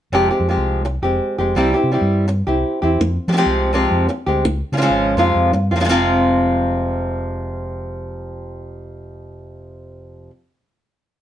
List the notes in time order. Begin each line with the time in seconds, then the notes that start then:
0.12 F1 C3 F3 G#3 C4 G4
0.31 G#3 C4 G4
0.40 F2
0.49 F3 G#3 C4 G4
0.57 C2
0.85 muted nylon-string guitar stroke
1.02 F1 G#3 C4 G4
1.38 F1 G#3 C4 G4
1.56 C2 C3 G3 C4 E4 G4
1.74 C4 E4 G4
1.84 C3
1.92 G3 C4 E4 G4
2.01 G2
2.28 muted nylon-string guitar stroke
2.47 C2 C4 E4 G4
2.82 E2 C4 E4 G4
3.01 F2, muted nylon-string guitar stroke
3.28 F3 G#3 C4 G4
3.33 F3 G#3 C4 G4
3.37 C3 F3 G#3 C4 G4
3.46 C2
3.73 C3 F3 G#3 C4 G4
3.91 F2
4.09 muted nylon-string guitar stroke
4.26 D2 G#3 C4 G4
4.45 C#2, muted nylon-string guitar stroke
4.72 C#3 F3 G#3 C#4 F4
4.77 F3 G#3 C#4 F4
4.82 C#3 F3 G#3 C#4 F4
4.89 G#1
5.17 F2 C3 F3 G#3 C4 F4
5.35 F2
5.53 G2, muted nylon-string guitar stroke
5.71 F2 G#3 C4 F4
5.76 C3 F3 G#3 C4 F4
5.80 C3 F3 G#3 C4 F4
5.84 C3 F3 G#3 C4 F4
5.89 F1 F2 C3 F3 G#3 C4 F4